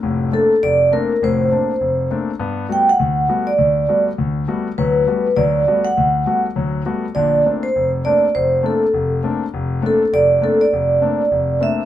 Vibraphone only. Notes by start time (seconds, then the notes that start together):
0.33 A4
0.63 D5
0.93 A#4
1.24 C5
2.72 G5
2.89 F#5
3.47 D5
4.78 B4
5.37 D5
5.85 F#5
7.15 D5
7.63 C5
8.05 D5
8.35 C5
8.66 A4
9.86 A4
10.14 D5
10.44 A4
10.61 D5
11.63 E5